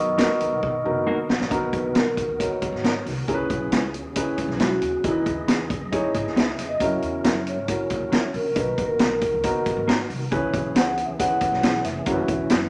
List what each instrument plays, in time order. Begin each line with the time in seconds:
Already playing: upright bass F#2, upright piano B2, tonewheel organ D#3 B3 F#4 A#4, vibraphone D#5, glockenspiel D#6
0.18 clean electric guitar A#3 D#4 F#4 A#4, upright piano B3 D#4 F#4 A#4, snare, closed hi-hat
0.41 upright bass D#2, closed hi-hat
0.52 upright bass B1
0.63 upright bass B2, kick
0.84 upright bass F#1, upright piano B3 D#4 F#4 A#4
1.07 clean electric guitar A#3 D#4 F#4 A#4
1.29 upright bass A#1, snare
1.40 upright bass A#1, snare
1.50 upright bass B1, upright piano B2 B3 D#4 F#4 A#4, tonewheel organ D#3 B3 F#4 A#4, kick, closed hi-hat
1.73 upright bass A#1, vibraphone B4, kick, closed hi-hat
1.95 upright bass B1, clean electric guitar F#3 B3 D#4 A#4, vibraphone A#4, snare, closed hi-hat
2.17 kick, closed hi-hat
2.29 upright bass C#2
2.39 upright piano B3 D#4 F#4 A#4, vibraphone C#5, kick, closed hi-hat
2.62 upright bass D#2, kick, closed hi-hat
2.72 upright bass G#1, snare
2.84 clean electric guitar F#3 B3 D#4 A#4, snare, closed hi-hat
3.06 upright bass C2, snare, open hi-hat
3.28 upright bass C#2, upright piano C#3 C#4 E4 G#4 A#4, tonewheel organ C#3 C#4 G#4, kick, closed hi-hat
3.34 upright piano B4
3.50 upright bass B1, kick, closed hi-hat
3.72 upright bass C#2, clean electric guitar G#3 C#4 E4 B4, snare, closed hi-hat
3.94 closed hi-hat
4.05 upright bass D#2
4.16 upright piano C#4 D#4 G#4 B4, kick, closed hi-hat
4.21 upright piano E4
4.38 upright bass E2, kick, closed hi-hat
4.48 upright bass B1, snare
4.60 clean electric guitar G#3 C#4 E4 B4, vibraphone F#4, snare, closed hi-hat
4.82 upright bass D#2, closed hi-hat
5.04 upright bass E2, upright piano E3 D#4 E4 G#4 A#4, tonewheel organ B3 D#5, vibraphone E4, kick, closed hi-hat
5.11 upright piano B4
5.26 upright bass D#2, kick, closed hi-hat
5.48 upright bass E2, clean electric guitar B3 D#4 G#4 B4, snare, closed hi-hat
5.70 kick, closed hi-hat
5.81 upright bass F#2
5.92 upright piano D#4 E4 G#4 C#5, kick, closed hi-hat
6.14 upright bass G#2, kick, closed hi-hat
6.25 upright bass C#2, snare
6.36 clean electric guitar B3 D#4 G#4 B4, vibraphone E5, snare, closed hi-hat
6.49 snare
6.59 upright bass F2, snare, closed hi-hat
6.69 vibraphone D#5
6.80 upright bass F#2, upright piano C#4 E4 F#4 A#4, tonewheel organ C#4 F#4 A#4, kick, closed hi-hat
6.84 vibraphone E5
7.02 upright bass E2, closed hi-hat
7.24 upright bass F#2, clean electric guitar F#3 C#4 E4 A#4, snare, closed hi-hat
7.47 vibraphone C#5, closed hi-hat
7.57 upright bass G#2
7.67 upright piano C#4 E4 F#4 A#4, kick, closed hi-hat
7.90 upright bass A#2, kick, closed hi-hat
8.00 upright bass D#2
8.12 clean electric guitar F#3 C#4 E4 A#4, snare, closed hi-hat
8.34 upright bass A#1, vibraphone A#4, open hi-hat
8.55 upright bass B1, upright piano B2 B3 D#4 F#4 A#4, tonewheel organ D#3 B3, vibraphone B4, kick, closed hi-hat
8.78 upright bass A#1, kick, closed hi-hat
8.86 vibraphone A#4
8.99 upright bass B1, clean electric guitar A#3 D#4 F#4 A#4, snare, closed hi-hat
9.21 kick, closed hi-hat
9.33 upright bass C#2
9.43 upright piano B3 D#4 F#4 A#4, kick, closed hi-hat
9.66 upright bass D#2, kick, closed hi-hat
9.77 upright bass G#1
9.88 clean electric guitar A#3 D#4 F#4 A#4, snare, closed hi-hat
10.00 snare
10.10 upright bass C2, open hi-hat
10.31 upright bass C#2, upright piano C#3 C#4 E4 G#4 B4, tonewheel organ E3 C#4 G#4, kick, closed hi-hat
10.54 upright bass B1, kick, closed hi-hat
10.75 upright bass C#2, clean electric guitar B3 E4 G#4 B4, vibraphone F#5, snare, closed hi-hat
10.97 closed hi-hat
11.06 upright bass D#2, vibraphone E5
11.19 upright piano C#4 D#4 G#4 B4, vibraphone F#5, kick, closed hi-hat
11.25 upright piano E4
11.41 upright bass E2, kick, closed hi-hat
11.52 upright bass B1, snare
11.63 clean electric guitar B3 E4 G#4 B4, snare, closed hi-hat
11.75 snare
11.84 upright bass F1, vibraphone E5, snare, closed hi-hat
12.06 upright bass F#1, tonewheel organ E3 F#4, upright piano C#4 E4 F#4 A#4, kick, closed hi-hat
12.12 upright piano B4
12.28 upright bass E1, kick, closed hi-hat
12.50 upright bass F#1, clean electric guitar B3 E4 F#4 B4, snare, closed hi-hat